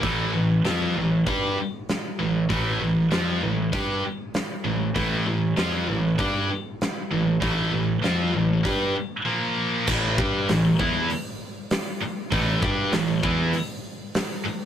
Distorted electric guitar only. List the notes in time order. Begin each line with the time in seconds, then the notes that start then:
0.02 A2 E3 A3
0.33 A2 E3
0.65 F3 C4 F4
0.96 A2 E3
1.27 G3 D4 G4
2.19 A2 E3
2.49 A2 E3 A3
2.80 A2 E3
3.11 F3 C4 F4
3.42 A2 E3
3.72 G3 D4 G4
4.65 A2 E3
4.95 A2 E3 A3
5.26 A2 E3
5.57 F3 C4 F4
5.88 A2 E3
6.18 G3 D4 G4
7.11 A2 E3
7.41 A2 E3 A3
7.72 A2 E3
8.02 F3 C4 F4
8.33 A2 E3
8.63 G3 D4 G4
9.25 A#2 F3 A#3
9.87 A2 E3 A3
10.18 G3 D4 G4
10.49 A2 E3
10.79 E3 B3 E4
12.02 muted distorted electric guitar stroke
12.32 A2 E3 A3
12.62 G3 D4 G4
12.93 A2 E3
13.23 E3 B3 E4
14.46 muted distorted electric guitar stroke